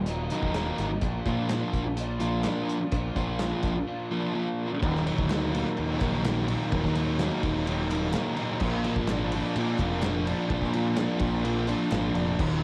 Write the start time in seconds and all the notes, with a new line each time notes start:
Already playing: D#1
0.06 D#2 A#2 D#3 F#3 A#3 D#4, closed hi-hat
0.30 D#3 F#3 A#3 D#4, closed hi-hat
0.43 D#1, kick
0.54 D#3 F#3 A#3 D#4, snare, clap, closed hi-hat
0.78 G#1, snare, closed hi-hat
1.01 A#1 A#2 F3 A#3 D4 F4, kick, closed hi-hat
1.26 A#2 F3 A#3 D4 F4, kick, closed hi-hat
1.49 F3 A#3 D4 F4, snare, clap, closed hi-hat
1.73 A#1, kick, closed hi-hat
1.97 A#2 F3 A#3 D4 F4, closed hi-hat
2.20 F3 A#3 D4 F4, closed hi-hat
2.44 F3 A#3 D4 F4, snare, clap, closed hi-hat
2.69 closed hi-hat
2.91 A#1 A#2 F3 A#3 D4 F4, kick, closed hi-hat
3.16 A#1 F3 A#3 D4 F4, kick, closed hi-hat
3.39 F3 A#3 D4 F4, snare, clap, closed hi-hat
3.63 A#1, kick, closed hi-hat
3.87 A#2 F3 A#3 D4 F4
4.11 F3 A#3 D4 F4
4.34 F3 A#3 D4 F4
4.82 D#1 D#2 A#2 D#3 F#3 A#3 D#4, kick, ride
4.95 snare
5.05 D#3 F#3 A#3 D#4, ride
5.18 D2, kick
5.29 D#3 F#3 A#3 D#4, snare, clap, ride
5.53 D#2 A#2 D#3 F#3 A#3 D#4, ride
5.77 D#2 D#3 F#3 A#3 D#4, ride
6.01 A#1 D#3 F#3 A#3 D#4, kick, clap, ride
6.25 D#2 A#2 D#3 F#3 A#3 D#4, snare, clap, ride
6.48 D#3 F#3 A#3 D#4, ride
6.72 D#1 D#2 A#2 D#3 F#3 A#3 D#4, kick, ride
6.84 D#2, kick, snare
6.95 D#3 F#3 A#3 D#4, ride
7.19 D#3 F#3 A#3 D#4, snare, clap, ride
7.43 D#1 D#2 A#2 D#3 F#3 A#3 D#4, kick, ride
7.66 D#3 F#3 A#3 D#4, ride
7.89 D#3 F#3 A#3 D#4, clap, ride
8.13 D#2 A#2 D#3 F#3 A#3 D#4, snare, clap, ride
8.37 D#3 F#3 A#3 D#4, ride
8.60 A#1 A#2 F3 A#3 D4 F4, kick, crash
8.84 A#3 D4 F4, ride
8.96 G#1, kick
9.07 F3 A#3 D4, snare, clap, ride
9.11 F4
9.32 F3 A#3 D4 F4, ride
9.36 A#2
9.56 A#2 F3 A#3 D4 F4, ride
9.79 F1 D4 F4, kick, clap, ride
9.83 A#3
10.03 A#2 F3 A#3 D4, snare, clap, ride
10.07 F4
10.27 A#3 D4 F4, ride
10.50 A#1 A#2 F3 A#3 D4 F4, kick, ride
10.62 A#2, kick, snare
10.73 A#3 D4 F4, ride
10.97 F3 A#3 D4 F4, snare, clap, ride
11.20 A#1 A#2 F3 A#3 D4 F4, kick, ride
11.44 F3 A#3 D4 F4, ride
11.68 A#3 D4 F4, clap, ride
11.91 G#1 A#2 F3 A#3 D4 F4, snare, clap, ride
12.14 F1 A#3 D4 F4, ride
12.38 D#1 D#2 A#2 D#3 F#3 A#3 D#4, kick, crash